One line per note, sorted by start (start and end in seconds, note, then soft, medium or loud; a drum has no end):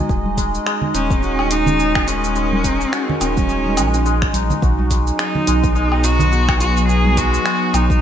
0.00 0.15 G#3 medium
0.00 4.62 G#3 medium
0.00 0.94 D#4 medium
0.00 8.02 D#4 medium
0.00 1.05 F#4 medium
0.00 1.22 F#4 medium
0.00 8.02 F#4 medium
0.00 8.02 D#5 medium
0.09 0.59 D#1 loud
0.09 1.79 G#4 medium
0.09 kick loud
0.09 shaker soft
0.26 high conga medium
0.37 0.65 G#3 loud
0.37 kick medium
0.37 closed hi-hat medium
0.37 shaker medium
0.46 6.19 C#4 medium
0.55 shaker soft
0.66 1.50 G#3 loud
0.66 finger snap medium
0.66 shaker soft
0.82 low conga medium
0.94 2.85 D#1 loud
0.94 1.21 C#4 loud
0.94 2.64 D#4 medium
0.94 closed hi-hat medium
0.94 high bongo soft
0.94 shaker medium
1.10 kick loud
1.10 shaker soft
1.22 1.53 C#4 loud
1.22 2.92 F#4 medium
1.22 shaker soft
1.39 low woodblock medium
1.51 2.07 G#3 medium
1.51 2.09 D#4 loud
1.51 closed hi-hat medium
1.51 shaker medium
1.60 4.62 A#4 medium
1.67 low conga loud
1.67 shaker soft
1.79 3.49 G#4 medium
1.79 shaker soft
1.95 finger snap medium
1.95 kick loud
1.95 low woodblock medium
2.07 2.34 G#3 loud
2.07 3.21 C#4 loud
2.07 closed hi-hat medium
2.07 high bongo soft
2.07 shaker medium
2.24 shaker soft
2.36 3.19 G#3 loud
2.36 shaker soft
2.53 high conga medium
2.64 4.34 D#4 medium
2.64 kick medium
2.64 closed hi-hat medium
2.64 shaker medium
2.81 shaker soft
2.92 4.63 F#4 medium
2.92 finger snap medium
2.92 shaker soft
3.10 low conga medium
3.20 3.79 D#1 medium
3.20 3.76 G#3 medium
3.20 4.31 C#4 medium
3.20 closed hi-hat medium
3.20 high bongo soft
3.20 low woodblock medium
3.20 shaker medium
3.37 kick loud
3.37 high conga medium
3.37 shaker soft
3.49 5.18 G#4 medium
3.49 shaker soft
3.66 high conga medium
3.77 4.27 A#1 medium
3.77 4.05 G#3 loud
3.77 closed hi-hat medium
3.77 low woodblock medium
3.77 shaker medium
3.94 high bongo soft
3.94 shaker soft
4.06 4.68 G#3 loud
4.06 shaker soft
4.22 finger snap medium
4.22 kick loud
4.22 high bongo soft
4.33 4.53 A#1 medium
4.33 6.03 D#4 medium
4.33 closed hi-hat medium
4.33 high conga medium
4.33 shaker medium
4.50 high bongo soft
4.50 low conga medium
4.50 shaker soft
4.62 5.12 B1 loud
4.62 8.02 F#3 medium
4.62 4.79 F#4 medium
4.62 kick loud
4.62 shaker soft
4.79 6.31 F#4 medium
4.79 high conga medium
4.91 5.46 G#3 medium
4.91 kick medium
4.91 closed hi-hat medium
4.91 shaker medium
5.04 8.02 B3 medium
5.04 shaker soft
5.19 5.72 D#4 loud
5.19 6.88 G#4 medium
5.19 finger snap medium
5.19 shaker soft
5.35 low conga medium
5.47 7.38 B1 medium
5.47 5.74 G#3 loud
5.47 closed hi-hat medium
5.47 high bongo soft
5.47 shaker medium
5.64 kick loud
5.64 shaker soft
5.75 6.59 G#3 loud
5.75 6.06 D#4 medium
5.75 8.02 B4 medium
5.75 shaker soft
5.92 low woodblock medium
6.03 7.73 D#4 medium
6.03 6.60 F#4 loud
6.03 closed hi-hat medium
6.03 shaker medium
6.20 low conga medium
6.20 shaker soft
6.31 6.48 F#4 medium
6.31 shaker soft
6.48 8.01 F#4 medium
6.48 finger snap medium
6.48 kick loud
6.48 low woodblock medium
6.60 7.16 G#3 medium
6.60 6.87 F#4 medium
6.60 closed hi-hat medium
6.60 high bongo soft
6.60 shaker medium
6.77 shaker soft
6.88 8.02 G#4 medium
6.88 7.19 G#4 loud
6.88 shaker soft
7.05 high conga medium
7.17 7.44 G#3 loud
7.17 7.75 F#4 loud
7.17 kick medium
7.17 closed hi-hat medium
7.17 shaker medium
7.34 shaker soft
7.45 8.02 G#3 loud
7.45 finger snap medium
7.45 shaker soft
7.73 8.02 B1 medium
7.73 8.02 D#4 loud
7.73 8.02 D#4 medium
7.73 closed hi-hat medium
7.73 high bongo soft
7.73 low woodblock medium
7.73 shaker medium
7.90 kick loud
7.90 high conga medium
7.90 shaker soft